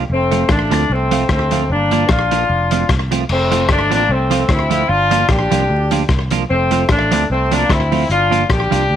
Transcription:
0.09 F1 A3 C4
0.31 F3 A3 C4 F4, closed hi-hat
0.49 A1 A3 D4, kick, cross-stick
0.70 D2 F3 A3 C4 F4, closed hi-hat
0.89 C2 A3 C4
1.11 F3 A3 C4 F4, closed hi-hat
1.29 D2 A3 C4, kick, cross-stick
1.51 F3 A3 C4 F4, closed hi-hat
1.70 G1 A#3 D4
1.91 F3 A#3 D4 F4, closed hi-hat
2.09 A#1 D4 F4, kick, cross-stick
2.31 F3 A#3 D4 F4, closed hi-hat
2.49 F1
2.71 F3 A3 C4 F4, closed hi-hat
2.89 C2, kick, cross-stick
3.11 F3 A3 C4 F4, closed hi-hat
3.29 F1 A3 C4, crash
3.51 F3 A3 C4 F4, closed hi-hat
3.69 G1 A3 D4, kick, cross-stick
3.90 A1 F3 A3 A#3 C4 F4, closed hi-hat
3.94 D4
4.09 C2 A3 C4
4.30 F3 A3 C4 F4, closed hi-hat
4.49 D2 C4 E4, kick, cross-stick
4.70 F3 A3 C4 F4, closed hi-hat
4.89 G1 D4 F4
5.10 F3 A#3 D4 F4, closed hi-hat
5.29 A#1 D4 G4, kick, cross-stick
5.51 C2 F3 A#3 D4 F4, closed hi-hat
5.70 D2
5.91 F3 A#3 D4 F4, closed hi-hat
6.09 C2, kick, cross-stick
6.31 F3 A#3 D4 F4, closed hi-hat
6.50 F1 A3 C4
6.71 F3 A3 C4 F4, closed hi-hat
6.89 A1 A3 D4, kick, cross-stick
7.11 D2 F3 A3 C4 F4, closed hi-hat
7.30 C2 A3 C4
7.51 F3 A3 A#3 C4 D4 F4, closed hi-hat
7.70 D2 C4 E4, kick, cross-stick
7.92 F3 A3 C4 F4, open hi-hat
8.09 G1 D4 F4, hi-hat pedal
8.30 F3 A#3 D4 F4, closed hi-hat
8.50 A#1 D4 G4, kick, cross-stick
8.70 C2 F3 A#3 D4 F4, closed hi-hat
8.90 D2

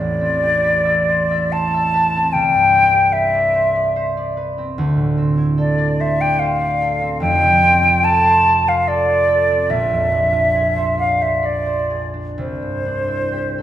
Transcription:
Already playing: A1 C4 A4 C5 D5 E5
0.00 E2
0.21 C4
0.43 G4
0.64 B4
0.85 E5
1.08 C5
1.31 E5
1.52 C5 A5
1.74 E5
1.94 B4
2.15 C4
2.33 C2 G5
2.55 G2
2.73 C4
2.93 G4
3.13 B4 E5
3.34 D5
3.54 C5
3.75 D5
3.96 C5
4.17 D5
4.37 B4
4.58 C4
4.78 D2
4.97 A2
5.17 C4
5.37 E4
5.58 A4 D5
5.78 D5
6.00 C5 E5
6.21 D5 G5
6.39 C5 F5
6.60 D5
6.81 A4
7.02 C4
7.20 F1 F2 G5
7.43 C3
7.62 C4
7.83 F4
8.03 A4 A5
8.26 C5
8.47 A4
8.67 C5 F5
8.87 A4 D5
9.08 C5
9.29 A4
9.50 C4
9.70 A#1 E5
9.91 F2
10.11 D4
10.32 F4
10.55 G#4
10.76 C5
10.98 D5 F5
11.20 C5 E5
11.43 D5
11.66 C5
11.90 G#4
12.14 D4
12.38 C2 C5
12.62 G2
12.86 D4
13.08 E4
13.33 G4
13.58 A4

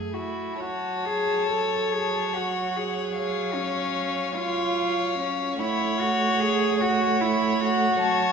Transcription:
Already playing: F#2 A3 G#4
0.14 E4 F#4
0.60 F#3 F#4 C#5 A5
1.05 G#4
1.49 A4
1.92 G#4
2.33 F#4 F#5
2.76 G#4
3.16 C#5 F5
3.54 C#4
4.35 F4 C#5 F5
5.19 C#4
5.60 A3 E4 C#5 F#5
6.00 F#4
6.41 G#4
6.81 F#4 C#5 F#5
7.21 E4
7.60 F#4
7.99 F#3 C#5 A5

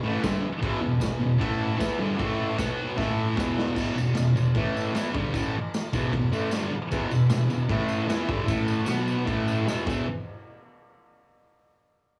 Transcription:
Already playing: G#4 B4 C#5
0.03 A2 E3 A3
0.19 G#4 B4 E5
0.23 G2 D3 G3, kick, snare, tambourine, crash
0.43 muted distorted electric guitar stroke
0.60 E2 B2 E3 G#4 B4 E5, kick, crash
0.82 E2 B2
0.98 E2 B2 G#4 B4 D#5, tambourine
1.02 kick, snare, crash
1.20 E2 B2
1.39 A2 E3 A3 E4 A4 E5, kick, crash
1.78 E3 B3 E4 G#4 B4 E5, kick, snare, tambourine, crash
1.98 G2 D3 G3
2.17 A2 E3 A3 E4 A4 E5, kick, crash
2.57 B2 F#3 B3 F#4 B4 F#5, kick, snare, tambourine, crash
2.96 A2 E3 A3 E4 A4 E5, kick, snare
3.36 E2 B2 E3 G#4 B4 E5, kick, snare
3.40 tambourine
3.58 snare
3.74 E2 B2 E3, kick, crash, tambourine
3.95 E2 B2, tambourine
4.14 E2 B2, snare, tambourine, crash
4.36 E2 B2, tambourine
4.55 A2 E3 A3, kick, crash
4.77 tambourine
4.94 E3 B3 E4, snare, tambourine, crash
5.12 G2 D3 G3, kick
5.34 A2 E3 A3, kick, tambourine, crash
5.74 snare, tambourine, crash
5.93 E2 B2 E3, kick, tambourine
6.13 E2 B2, kick, crash
6.33 A2 E3 A3, tambourine
6.51 G2 D3 G3, snare, tambourine, crash
6.71 muted distorted electric guitar stroke
6.90 E2 B2 E3 G#4 B4 E5, kick, tambourine, crash
7.09 E2 B2 G#4 B4 E5, tambourine
7.29 E2 B2 G#4 B4, snare, tambourine, crash
7.33 E5
7.49 E2 B2, tambourine
7.69 A2 E3 A3 E4 A4 E5, kick, crash
7.89 tambourine
8.08 E3 B3 E4 G#4 B4 E5, snare, tambourine, crash
8.28 G2 D3 G3, kick
8.44 A2 E3 E4 A4 E5
8.48 A3, kick, tambourine, crash
8.61 E4 A4 F#5
8.68 tambourine
8.83 B2 F#4 B4 F#5, tambourine
8.87 F#3 B3, snare, crash
9.08 tambourine
9.25 A2 E3 A3 E4 A4 E5, kick, tambourine, crash
9.48 tambourine
9.64 E2 B2 G#4 B4 E5, snare
9.68 E3, tambourine
9.86 E2 B2 E3 G#4 B4 E5, kick, crash, tambourine

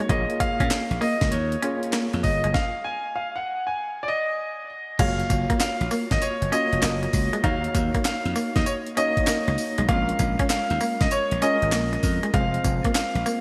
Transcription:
Already playing: A#3 D#4 F#4 A#4
0.09 A#1 A#3 F4 G#4 C#5 D#5, kick, closed hi-hat
0.30 closed hi-hat
0.40 F5, muted clean electric guitar stroke, muted slap bass stroke, kick, closed hi-hat
0.60 A#2 C#4, kick, closed hi-hat
0.70 muted slap bass stroke, snare, clap, closed hi-hat
0.91 A#1, closed hi-hat
1.01 A#3 D#5, open hi-hat
1.21 C#2, kick, snare, closed hi-hat
1.31 D#2 C#5, closed hi-hat
1.52 closed hi-hat
1.62 A#3 C#4 F4 G#4 C#5, closed hi-hat
1.83 closed hi-hat
1.93 A#3, snare, clap, closed hi-hat
2.13 F2, muted clean electric guitar stroke, closed hi-hat
2.23 G1 D#5, kick, open hi-hat
2.44 F#1 G#3, closed hi-hat
2.54 F5, kick, snare
2.84 G#5
3.16 F5
3.36 F#5
3.67 G#5
4.03 D5
4.08 D#5
4.99 F#1 G#3 A#3 F4 F#4 C#5 F5, kick, closed hi-hat, crash
5.20 closed hi-hat
5.30 F#1, muted clean electric guitar stroke, kick, closed hi-hat, tambourine
5.50 A#3, kick, closed hi-hat
5.60 F5, snare, clap, closed hi-hat, tambourine
5.81 A#1, closed hi-hat
5.91 A#3, open hi-hat, tambourine
6.11 G#1 D#5, kick, snare, closed hi-hat
6.22 C#5, closed hi-hat, tambourine
6.42 F#1, closed hi-hat
6.52 A#3 C#4 F4 F#4 C#5 D#5, closed hi-hat, tambourine
6.72 F1, closed hi-hat
6.82 F#1 A#3, snare, clap, closed hi-hat, tambourine
7.03 muted clean electric guitar stroke, closed hi-hat
7.13 C#2, kick, open hi-hat, tambourine
7.33 G#3, closed hi-hat
7.44 D#2 A#3 D#4 F#4 C#5 F5, kick, closed hi-hat
7.64 closed hi-hat
7.75 D#2, muted clean electric guitar stroke, kick, closed hi-hat, tambourine
7.94 A#3, kick, closed hi-hat
8.05 F5, snare, clap, closed hi-hat, tambourine
8.25 F2, closed hi-hat
8.36 A#3, open hi-hat, tambourine
8.56 D#2 D#5, kick, snare, closed hi-hat
8.66 C#5, closed hi-hat, tambourine
8.86 closed hi-hat
8.97 A#3 C#4 D#4 F#4 C#5 D#5, closed hi-hat, tambourine
9.17 kick, closed hi-hat
9.27 A#3, muted slap bass stroke, snare, clap, closed hi-hat, tambourine
9.48 C#2, muted clean electric guitar stroke, closed hi-hat
9.58 open hi-hat, tambourine
9.78 B1 G#3, closed hi-hat
9.88 A#1 G#3 A#3 C4 F4 A#4 F5, kick, closed hi-hat
9.96 C#4
10.09 closed hi-hat
10.19 A#1, muted clean electric guitar stroke, kick, closed hi-hat, tambourine
10.39 C#4, kick, closed hi-hat
10.50 F5, snare, clap, closed hi-hat, tambourine
10.70 D#2, closed hi-hat
10.80 A#3, open hi-hat, tambourine
11.01 C#2 D#5, kick, snare, closed hi-hat
11.11 C#5, closed hi-hat, tambourine
11.31 A#1, closed hi-hat
11.42 G#3 C#4 F4 A#4 D#5, closed hi-hat, tambourine
11.62 G#1, closed hi-hat
11.72 A#1 A#3, snare, clap, closed hi-hat, tambourine
11.93 muted clean electric guitar stroke, closed hi-hat
12.03 F2, kick, open hi-hat, tambourine
12.23 G#3, closed hi-hat
12.34 F1 G#3 C4 F4 C5 F5, kick, closed hi-hat
12.54 closed hi-hat
12.64 F1, muted clean electric guitar stroke, kick, closed hi-hat, tambourine
12.84 A#3, kick, closed hi-hat
12.95 F5, snare, clap, closed hi-hat, tambourine
13.15 A#1, closed hi-hat
13.26 A#3, open hi-hat, tambourine

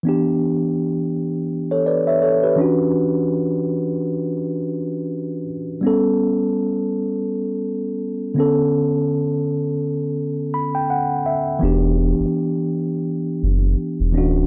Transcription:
0.03 E3 B3 D4
0.09 G4
1.71 A4 C#5
1.86 B4 D5
2.07 C#5 E5
2.22 A4 C#5
2.43 G4 B4
2.56 E3 C#4 D4
2.61 F#4
5.81 G3 B3 C#4
5.87 A4
8.34 D3 B3 C#4
8.40 A4
10.54 B5
10.75 G5
10.90 F#5
11.26 E5
11.59 E1 E3 B3 D4
11.65 G4
12.19 F#1
13.43 F#1
14.00 E1
14.12 D1 E3 C#4 D4
14.18 F#4

